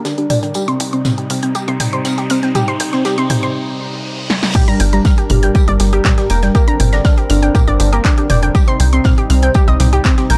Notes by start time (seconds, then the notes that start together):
Already playing: G3 D4 A#4, riser
0.05 D4 G4, snare, closed hi-hat, tambourine
0.18 D4 G4, closed hi-hat
0.30 G1 D5 G5, mid tom, open hi-hat, tambourine
0.43 D4 G5, closed hi-hat
0.54 C3 D#4 G4, closed hi-hat, tambourine
0.68 C4 C6, closed hi-hat
0.80 C2 G5, open hi-hat, tambourine
0.93 C4 C6, closed hi-hat
1.05 C4 F6, snare, closed hi-hat, mid tom, tambourine
1.18 G4, closed hi-hat
1.30 C2 C4 F6, open hi-hat, tambourine
1.43 C4 G5, closed hi-hat
1.55 G4, closed hi-hat, tambourine
1.68 C2 C4 C6, closed hi-hat
1.80 C2 G5, snare, mid tom, open hi-hat, tambourine
1.93 C4 C6, closed hi-hat
2.05 C4 F6, snare, closed hi-hat, tambourine
2.18 G4, snare, closed hi-hat
2.30 C2 C4 F6, open hi-hat, tambourine
2.43 C4 G5, snare, closed hi-hat
2.55 G4, closed hi-hat, mid tom, tambourine
2.68 C4 C6, closed hi-hat
2.80 C2 G5, open hi-hat, tambourine
2.93 C4 C6, snare, closed hi-hat
3.05 G4, snare, closed hi-hat, tambourine
3.18 C4 C6, closed hi-hat
3.30 C2 G5, mid tom, open hi-hat, tambourine
3.43 C4 C6, closed hi-hat
3.55 reverse cymbal
4.30 snare
4.43 snare
4.55 G3 D4 G4 A#4, kick, closed hi-hat, mid tom, crash, tambourine
4.68 G3 A#5, closed hi-hat
4.80 G1 G5, open hi-hat, tambourine
4.93 G3 A#5, closed hi-hat
5.05 G3 F6, kick, snare, closed hi-hat, tambourine
5.18 G4, closed hi-hat
5.30 G1 G3 F6, mid tom, open hi-hat, tambourine
5.43 G3 G5, closed hi-hat
5.55 G4, kick, closed hi-hat, tambourine
5.68 G1 G3 D5, closed hi-hat
5.80 G1 G3 G4, snare, open hi-hat, tambourine
5.93 G4, closed hi-hat
6.05 G3 G4, kick, snare, clap, closed hi-hat, mid tom, tambourine
6.18 G3 G4, snare, closed hi-hat
6.30 F1 A#4 G5, open hi-hat, tambourine
6.42 G3 G5, snare, closed hi-hat
6.55 C4 G4 A#4, kick, closed hi-hat, tambourine
6.68 D4 A#5, closed hi-hat
6.80 G1 G5, mid tom, open hi-hat, tambourine
6.93 D4 A#5, snare, closed hi-hat
7.05 D4 F6, kick, snare, closed hi-hat, tambourine
7.18 G4, closed hi-hat
7.30 G1 D4 F6, open hi-hat, tambourine
7.43 D4 G5, closed hi-hat
7.55 G4 A#4, kick, closed hi-hat, mid tom, tambourine
7.68 G1 D4 D5, closed hi-hat
7.80 G1 D4 G4, open hi-hat, tambourine
7.93 G4 A#4, closed hi-hat
8.04 D4 G4, kick, snare, clap, closed hi-hat, tambourine
8.18 D4 G4, closed hi-hat
8.30 F1 D5 G5, mid tom, open hi-hat, tambourine
8.43 D4 G5, closed hi-hat
8.55 C3 D#4 G4, kick, closed hi-hat, tambourine
8.67 C4 C6, closed hi-hat
8.80 C2 G5, open hi-hat, tambourine
8.93 C4 C6, closed hi-hat
9.04 C4 F6, kick, snare, closed hi-hat, mid tom, tambourine
9.18 G4, closed hi-hat
9.30 C2 C4 F6, open hi-hat, tambourine
9.42 C4 G5, closed hi-hat
9.54 G4, kick, closed hi-hat, tambourine
9.68 C2 C4 D#5, closed hi-hat
9.80 C2 C4 G4, snare, mid tom, open hi-hat, tambourine
9.93 G4, closed hi-hat
10.04 C4 G4, kick, snare, clap, closed hi-hat, tambourine
10.17 C4 G4, snare, closed hi-hat
10.30 A#1 A#4 G5, open hi-hat, tambourine